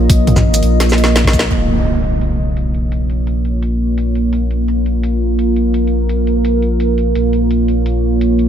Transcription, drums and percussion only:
0.10 kick loud
0.10 closed hi-hat medium
0.27 closed hi-hat soft
0.27 mid tom medium
0.36 kick medium
0.36 snare soft
0.36 mid tom medium
0.36 shaker soft
0.54 closed hi-hat medium
0.54 shaker medium
0.63 closed hi-hat soft
0.80 snare medium
0.80 closed hi-hat medium
0.89 snare medium
0.89 shaker soft
0.98 closed hi-hat soft
1.04 snare medium
1.16 snare medium
1.16 closed hi-hat medium
1.24 kick medium
1.24 snare loud
1.24 mid tom soft
1.33 kick loud
1.33 closed hi-hat soft
1.33 shaker soft
1.39 snare loud
1.51 closed hi-hat medium
1.69 closed hi-hat soft
1.86 closed hi-hat medium
2.04 closed hi-hat soft
2.21 closed hi-hat medium
2.57 closed hi-hat medium
2.74 closed hi-hat soft
2.92 closed hi-hat medium
3.10 closed hi-hat soft
3.27 closed hi-hat medium
3.45 closed hi-hat soft
3.62 closed hi-hat medium
3.98 closed hi-hat medium
4.15 closed hi-hat soft
4.33 closed hi-hat medium
4.51 closed hi-hat soft
4.68 closed hi-hat medium
4.86 closed hi-hat soft
5.03 closed hi-hat medium
5.39 closed hi-hat medium
5.56 closed hi-hat soft
5.74 closed hi-hat medium
5.87 closed hi-hat soft
6.09 closed hi-hat medium
6.27 closed hi-hat soft
6.45 closed hi-hat medium
6.62 closed hi-hat soft
6.80 closed hi-hat medium
6.98 closed hi-hat soft
7.15 closed hi-hat medium
7.33 closed hi-hat soft
7.51 closed hi-hat medium
7.68 closed hi-hat soft
7.86 closed hi-hat medium
8.21 closed hi-hat medium
8.39 closed hi-hat soft

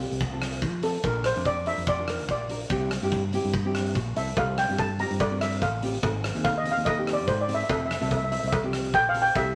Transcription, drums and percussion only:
0.00 closed hi-hat medium
0.11 closed hi-hat medium
0.21 kick loud
0.21 closed hi-hat medium
0.42 cross-stick medium
0.42 closed hi-hat medium
0.53 closed hi-hat medium
0.62 kick medium
0.62 closed hi-hat medium
0.83 closed hi-hat loud
0.94 closed hi-hat medium
1.03 kick loud
1.03 closed hi-hat medium
1.24 cross-stick medium
1.24 closed hi-hat medium
1.36 closed hi-hat medium
1.45 kick medium
1.45 closed hi-hat medium
1.66 closed hi-hat medium
1.77 closed hi-hat medium
1.87 kick loud
1.87 closed hi-hat medium
2.08 cross-stick medium
2.08 closed hi-hat medium
2.19 closed hi-hat medium
2.29 kick medium
2.29 closed hi-hat medium
2.50 closed hi-hat medium
2.60 closed hi-hat medium
2.70 kick loud
2.70 closed hi-hat medium
2.91 cross-stick medium
2.91 closed hi-hat medium
3.02 closed hi-hat medium
3.12 kick medium
3.12 closed hi-hat medium
3.33 closed hi-hat medium
3.44 closed hi-hat medium
3.53 kick loud
3.53 closed hi-hat medium
3.75 cross-stick medium
3.75 closed hi-hat medium
3.86 closed hi-hat medium
3.95 kick medium
3.95 closed hi-hat medium
4.16 closed hi-hat medium
4.28 closed hi-hat medium
4.37 kick loud
4.37 closed hi-hat medium
4.37 cowbell medium
4.58 cross-stick medium
4.58 closed hi-hat medium
4.69 closed hi-hat medium
4.79 kick medium
4.79 closed hi-hat medium
4.79 cowbell medium
4.99 closed hi-hat medium
5.11 closed hi-hat medium
5.20 kick loud
5.20 closed hi-hat medium
5.20 cowbell loud
5.41 cross-stick medium
5.41 closed hi-hat medium
5.53 closed hi-hat medium
5.62 kick medium
5.62 closed hi-hat medium
5.62 cowbell medium
5.83 closed hi-hat medium
5.94 closed hi-hat medium
6.03 kick loud
6.03 closed hi-hat medium
6.03 cowbell medium
6.24 cross-stick medium
6.24 closed hi-hat medium
6.35 closed hi-hat medium
6.45 kick medium
6.45 closed hi-hat medium
6.45 cowbell medium
6.66 closed hi-hat medium
6.77 closed hi-hat medium
6.86 kick loud
6.86 closed hi-hat medium
6.86 cowbell loud
7.07 cross-stick medium
7.07 closed hi-hat medium
7.18 closed hi-hat medium
7.28 kick medium
7.28 closed hi-hat medium
7.28 cowbell medium
7.49 closed hi-hat medium
7.60 closed hi-hat medium
7.69 kick loud
7.69 closed hi-hat medium
7.69 cowbell medium
7.91 cross-stick medium
7.91 closed hi-hat medium
8.02 closed hi-hat medium
8.11 kick medium
8.11 closed hi-hat medium
8.11 cowbell medium
8.32 closed hi-hat medium
8.43 closed hi-hat medium
8.52 kick loud
8.52 closed hi-hat medium
8.52 cowbell loud
8.73 cross-stick medium
8.73 closed hi-hat medium
8.84 closed hi-hat medium
8.94 kick medium
8.94 closed hi-hat medium
8.94 cowbell medium
9.14 closed hi-hat medium
9.26 closed hi-hat medium
9.35 kick loud
9.35 closed hi-hat medium
9.35 cowbell medium

